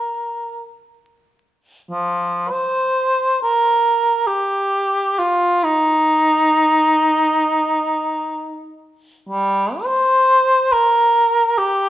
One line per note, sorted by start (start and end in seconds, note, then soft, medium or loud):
0.00 0.68 A#4 soft
1.91 2.51 F3 medium
2.50 3.42 C5 medium
3.42 4.28 A#4 medium
4.27 5.20 G4 medium
5.19 5.65 F4 medium
5.64 8.78 D#4 medium
9.29 9.82 G3 medium
9.81 10.74 C5 loud
10.72 11.59 A#4 medium
11.58 11.89 G4 medium